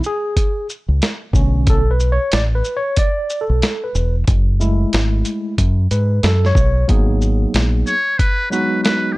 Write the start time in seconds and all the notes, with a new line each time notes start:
0.04 G#4, shaker
0.37 kick, closed hi-hat
0.69 shaker
0.88 C#2
1.02 snare, closed hi-hat
1.33 B1 D3 A3 C#4, kick, shaker
1.67 A4, kick, closed hi-hat
1.91 B4
2.00 shaker
2.12 C#5
2.32 A1 D5, snare, closed hi-hat
2.55 B4
2.64 shaker
2.77 C#5
2.96 D5, kick, closed hi-hat
3.30 shaker
3.41 A4
3.50 B1
3.62 snare, closed hi-hat
3.84 B4
3.95 E1, shaker
4.27 F#1, kick, closed hi-hat
4.60 G#3 A3 E4, shaker
4.93 G#1, snare, closed hi-hat
5.25 closed hi-hat, shaker
5.58 F#2, kick, closed hi-hat
5.91 G#2 B4, closed hi-hat, shaker
6.23 F#2 A4, snare, closed hi-hat
6.45 C#5, snare
6.55 B1, kick, shaker
6.88 G#1 F#3 A#3 B3 D#4 G#4, kick, closed hi-hat
7.21 shaker
7.54 A#1, snare, closed hi-hat
7.87 C#5, shaker
8.19 B4, kick, closed hi-hat
8.50 F#3 G#3 B3 D#4 F#4 B4, shaker
8.83 B4, snare, closed hi-hat
9.12 G4